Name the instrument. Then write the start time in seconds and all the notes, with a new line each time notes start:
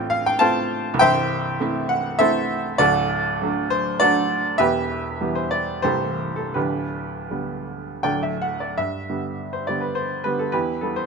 grand piano
Already playing: A1 A2 A3 C4 F4 G5
0.10 F5
0.26 G5
0.39 A3 C4 F4 C5 F5 A5
0.94 C2
0.99 C1 C5 E5 G5
1.60 A3 C4 E4
1.89 F#5
2.19 A3 C4 E4 A4 C5 E5
2.78 D1 D2 F#4 A4 D5
3.42 F#3 A3 D4
3.70 C5
4.00 F#3 A3 D4 F#4 A4 D5
4.58 E1 E2 G4 B4 E5
5.21 E3 G3 B3
5.35 C5
5.51 D5
5.82 C1 C2 E3 G3 A3 G4 A4 C5
6.36 A4
6.54 D1 D2 D4 G4 B4
7.31 D3 G3 B3
8.03 D1 D2 D3 F#3 A3 D5 G5
8.23 E5
8.42 F#5
8.60 D5
8.78 G2 E5
9.10 D3 G3 B3
9.53 C5
9.67 D3 G3 B3 D5
9.81 B4
9.95 C5
10.24 D3 G3 B3 B4
10.39 A4
10.52 E2 E4 G4 B4
10.81 G3 B3 E4 A4
10.96 C5